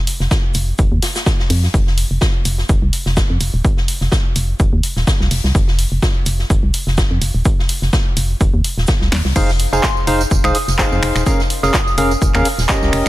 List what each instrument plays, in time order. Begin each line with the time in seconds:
0.07 open hi-hat, shaker
0.20 fm bass F1, snare
0.31 kick, snare, shaker
0.54 fm bass F1, open hi-hat, shaker
0.78 fm bass F1, kick, shaker
0.92 fm bass D#2
1.02 snare, open hi-hat, shaker
1.15 snare, shaker
1.26 kick, snare, shaker
1.39 snare
1.50 fm bass F2, open hi-hat
1.63 snare
1.74 fm bass F1, kick, shaker
1.87 snare
1.98 open hi-hat, shaker
2.11 fm bass F1
2.21 kick, snare, shaker
2.45 fm bass F1, open hi-hat, shaker
2.58 snare
2.69 fm bass F1, kick, shaker
2.82 fm bass C2
2.93 open hi-hat, shaker
3.06 fm bass F1, snare
3.17 kick, snare, shaker
3.30 fm bass F2
3.40 fm bass F1, open hi-hat, shaker
3.54 fm bass D#1
3.64 kick, shaker
3.77 snare
3.88 open hi-hat, shaker
4.01 fm bass F1, snare
4.12 kick, snare, shaker
4.36 fm bass F1, open hi-hat, shaker
4.60 fm bass F1, kick, shaker
4.73 fm bass D#2
4.83 open hi-hat, shaker
4.96 fm bass D#1, snare
5.07 kick, snare, shaker
5.20 fm bass C2, snare
5.31 fm bass F1, open hi-hat
5.44 fm bass C2, snare
5.55 fm bass F1, kick, shaker
5.68 snare
5.79 open hi-hat, shaker
5.92 fm bass F1
6.02 kick, snare, shaker
6.26 fm bass F1, open hi-hat, shaker
6.39 snare
6.50 fm bass F1, kick, shaker
6.63 fm bass C2
6.74 open hi-hat, shaker
6.87 fm bass F1, snare
6.98 kick, snare, shaker
7.11 fm bass F2
7.22 fm bass F1, open hi-hat, shaker
7.34 fm bass D#1
7.45 kick, shaker
7.59 snare
7.69 open hi-hat, shaker
7.82 fm bass F1, snare
7.93 kick, snare, shaker
8.17 fm bass F1, open hi-hat, shaker
8.41 fm bass F1, kick, shaker
8.54 fm bass D#2
8.64 open hi-hat, shaker
8.78 fm bass D#1, snare
8.87 kick, snare, shaker
9.01 fm bass C2, snare
9.12 fm bass D#2, snare, open hi-hat
9.25 fm bass C2, snare
9.36 fm bass F1, synth stab D#4 G#4 C5 F5, kick, crash, tambourine, shaker
9.49 snare, tambourine
9.60 open hi-hat, shaker
9.73 fm bass F1, synth stab D#4 G#4 C5 F5, synth bell G#5, tambourine
9.83 synth bell C6, kick, snare, clap, tambourine, shaker
9.97 tambourine
10.07 fm bass F1, synth stab D#4 G#4 C5 F5, open hi-hat, shaker
10.21 tambourine
10.31 fm bass F1, kick, tambourine, shaker
10.44 fm bass C2, synth stab D#4 G#4 C5 F5, synth bell D#6, finger snap, tambourine
10.55 synth bell D#6, open hi-hat, shaker
10.67 fm bass F1, snare, tambourine
10.79 synth stab D#4 G#4 C5 F5, kick, snare, clap, shaker
10.92 fm bass F2, tambourine
11.03 fm bass F1, finger snap, open hi-hat, shaker
11.16 fm bass D#1, finger snap, tambourine
11.26 synth stab C#4 G#4 A#4 F5, kick, tambourine, shaker
11.40 snare, tambourine
11.50 open hi-hat, shaker
11.63 fm bass F1, synth stab C#4 G#4 A#4 F5, synth bell D#6, snare, tambourine
11.74 kick, snare, clap, tambourine, shaker
11.87 tambourine
11.98 fm bass F1, synth stab C#4 G#4 A#4 F5, open hi-hat, shaker
12.11 tambourine
12.22 fm bass F1, kick, tambourine, shaker
12.34 fm bass D#2, synth stab C#4 G#4 A#4 F5, finger snap, clap, tambourine
12.45 open hi-hat, shaker
12.58 fm bass D#1, snare, tambourine
12.69 synth stab C#4 G4 A#4 D#5, kick, snare, clap, tambourine, shaker
12.82 fm bass C2, snare, tambourine
12.93 fm bass F1, finger snap, open hi-hat